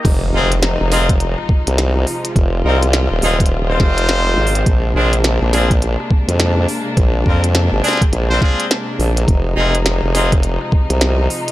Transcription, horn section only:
X:1
M:4/4
L:1/16
Q:"Swing 16ths" 1/4=104
K:Fm
V:1 name="Horn section"
z2 [CEFA] z3 [CEFA] z8 z | z2 [CEFB] z3 [CEFA] z2 [CEFc]6- [CEFc] | z2 [C=DFA] z3 [CDFA] z8 z | z2 [C=DFB] z3 [CDFA] z2 [CDFc] [CDFA]2 z4 |
z2 [CEFA] z3 [CEFA] z8 z |]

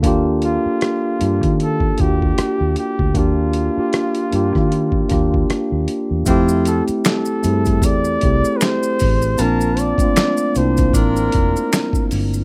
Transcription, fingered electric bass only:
X:1
M:4/4
L:1/16
Q:"Swing 16ths" 1/4=77
K:F
V:1 name="Fingered electric bass" clef=bass
_E,,3 z3 G,, _E,3 E,,2 z E,, z D,, | _E,,3 z3 G,, _E,3 E,,2 z E,, z =E,, | F,,3 z3 G,,2 E,,2 C,, z3 A,,,2 | B,,,3 z3 C,,2 A,,,2 F,,, z3 G,,,2 |]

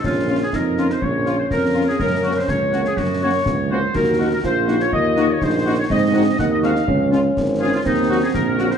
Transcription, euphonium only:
X:1
M:2/4
L:1/8
Q:1/4=123
K:Ebdor
V:1 name="Euphonium"
D2 E2 | D4 | D4- | D3 z |
G2 F2- | F2 E2 | C2 E2 | D4 |
C4 |]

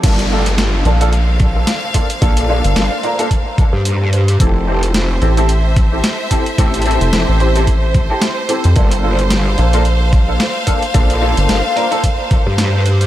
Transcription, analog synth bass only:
X:1
M:4/4
L:1/16
Q:"Swing 16ths" 1/4=110
K:Gdor
V:1 name="Analog synth bass" clef=bass
z6 B,,,6 z4 | z3 G,,, z12 | z6 A,,,6 z4 | z3 F,,, z A,,,6 z4 F,, |
z6 B,,,6 z4 | z3 G,,, z12 |]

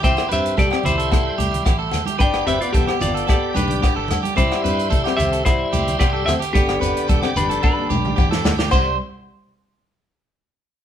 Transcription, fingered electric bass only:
X:1
M:4/4
L:1/16
Q:1/4=110
K:C
V:1 name="Fingered electric bass" clef=bass
C,, z G,,2 C,, z C,,4 C,,2 A,,,2 z2 | G,,,2 G,,, z E,,, z G,,,2 z2 B,,,2 z G,,, G,, z | C,, z G,,2 C,, z C,,4 C,,2 C,,2 z2 | G,,,2 G,,, z E,,, z G,,,2 z2 B,,,2 E,,2 D,,2 |
C,,2 z12 z2 |]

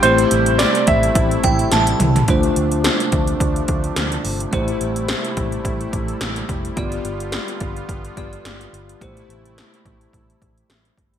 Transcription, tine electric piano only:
X:1
M:4/4
L:1/8
Q:"Swing 16ths" 1/4=107
K:Am
V:1 name="Tine electric piano"
[A,CEGc]8 | [A,DFc]8 | [A,EGc]8 | [B,FGd]4- [B,FGd] [B,FGd]3 |
[A,EGc]8 |]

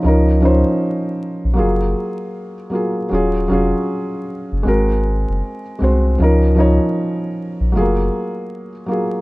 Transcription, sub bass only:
X:1
M:4/4
L:1/16
Q:"Swing 16ths" 1/4=78
K:Db
V:1 name="Sub bass" clef=bass
D,,3 z4 B,,, G,,,2 z6 | E,,,2 F,,, z4 G,,, A,,,3 G,,, z2 C,,2 | D,,3 z4 B,,, G,,,2 z6 |]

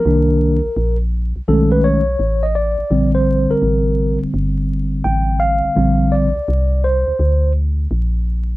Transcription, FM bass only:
X:1
M:4/4
L:1/16
Q:"Swing 16ths" 1/4=84
K:Bb
V:1 name="FM bass" clef=bass
C,,3 B,,, B,,,3 _C,, =B,,,4 A,,,3 A,,, | B,,,3 A,,, A,,,3 G,,, G,,,4 A,,,3 A,,, | B,,,3 C,, C,,3 D,, D,,4 B,,,4 |]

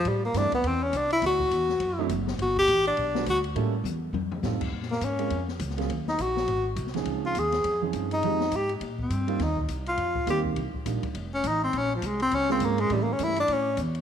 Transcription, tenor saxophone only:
X:1
M:4/4
L:1/8
Q:"Swing" 1/4=205
K:Aphr
V:1 name="Tenor saxophone"
G, B, D =B, C ^C D E | ^F6 z2 | ^F G2 D3 F z | z8 |
[K:Bbdor] z B, D3 z3 | z E _G3 z3 | z F A3 z2 E- | E2 G z2 C3 |
E z2 F3 G z | z4 z D E C | D F, A, C D C B, A, | (3G, B, ^C =E =D C2 z2 |]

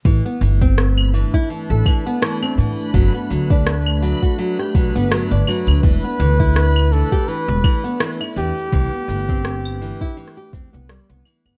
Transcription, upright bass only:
X:1
M:4/4
L:1/16
Q:"Swing 16ths" 1/4=83
K:Ador
V:1 name="Upright bass" clef=bass
A,,, z G,,,4 z3 A,,, z4 A,, z | G,,, z D,,4 z4 B,,, G,,, z G,,, z D,, | E,,, z D,,4 z3 E,,, z4 E,, z | C,, z G,,,4 z4 E,, C,, z C,, z G,,, |]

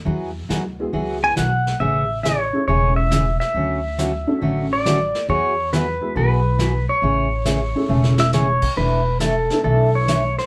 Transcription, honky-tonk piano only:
X:1
M:4/4
L:1/8
Q:"Swing" 1/4=138
K:A
V:1 name="Honky-tonk piano"
z3 [G,B,EFG]3 z2 | z3 [A,CEGA]3 z2 | z3 [A,CDFA]3 z2 | z3 [G,B,EFG]3 z2 |
z3 [A,CEGA]3 z2 | z3 [A,B,DEA]3 z2 |]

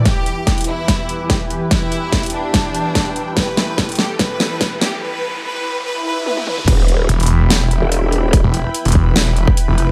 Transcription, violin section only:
X:1
M:4/4
L:1/8
Q:1/4=145
K:Em
V:1 name="Violin section"
G3 E3 G z | E3 D4- D | B3 G B3 G | B2 B2 B B B B |
z8 | z8 |]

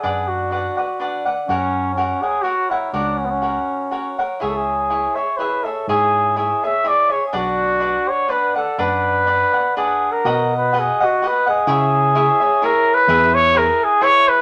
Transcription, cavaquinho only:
X:1
M:3/4
L:1/8
Q:"Swing" 1/4=124
K:Bdor
V:1 name="Cavaquinho"
[DBdf]2 [DBdf] [Bdf] [DBdf] [Bdf] | [F^Acf]2 [FAcf] [Acf] [FAcf] [Acf] | [F^Acf]2 [FAcf]2 [FAcf] [Acf] | [EGce]2 [EGce] [Gce] [EGce] [Gce] |
[EGce]2 [EGce] [Gce] [EGce] [Gce] | [DBdf]2 [DBdf]2 [DBdf] [Bdf] | [DBdf]2 [DBdf] [Bdf] [DBdf]2 | [K:B] [FBdf]2 [FBdf] [Bdf] [FBdf] [Bdf] |
[EGce]2 [EGce] [Gce] [EGce]2 | [EGBe]2 [EGBe]2 [EGBe]2 |]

